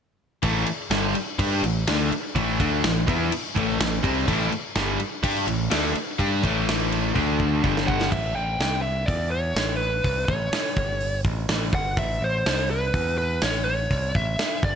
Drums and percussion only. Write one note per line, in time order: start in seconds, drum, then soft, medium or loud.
0.43 kick medium
0.43 crash medium
0.66 crash medium
0.91 snare medium
0.91 crash medium
1.15 crash medium
1.39 kick loud
1.39 crash medium
1.64 crash medium
1.87 snare loud
1.87 crash medium
2.12 crash medium
2.36 kick medium
2.36 crash medium
2.60 kick medium
2.60 crash medium
2.84 snare loud
2.84 crash medium
3.08 kick loud
3.08 crash medium
3.32 crash medium
3.56 kick medium
3.56 crash soft
3.80 snare loud
3.80 crash medium
4.04 kick medium
4.04 crash medium
4.28 kick medium
4.28 crash medium
4.52 crash medium
4.75 snare loud
4.75 crash medium
5.00 crash medium
5.24 kick loud
5.24 crash medium
5.48 crash medium
5.71 snare loud
5.71 crash medium
5.95 crash medium
6.19 kick medium
6.19 crash medium
6.44 kick medium
6.44 crash medium
6.69 snare medium
6.69 crash medium
6.92 crash medium
7.16 kick medium
7.40 kick medium
7.64 kick medium
7.77 snare medium
7.88 kick medium
8.01 snare medium
8.12 kick medium
8.12 crash medium
8.60 snare medium
8.60 open hi-hat soft
9.08 kick loud
9.08 open hi-hat soft
9.56 snare medium
9.56 open hi-hat medium
10.04 kick medium
10.04 open hi-hat soft
10.28 kick loud
10.53 snare medium
10.53 open hi-hat soft
10.77 kick loud
11.00 open hi-hat medium
11.25 kick loud
11.49 snare loud
11.49 open hi-hat soft
11.73 kick medium
11.97 kick medium
11.97 open hi-hat soft
12.46 snare medium
12.46 open hi-hat soft
12.94 kick medium
12.94 open hi-hat soft
13.41 snare loud
13.41 open hi-hat medium
13.91 kick medium
13.91 open hi-hat soft
14.15 kick medium
14.39 snare medium
14.39 open hi-hat soft
14.63 kick loud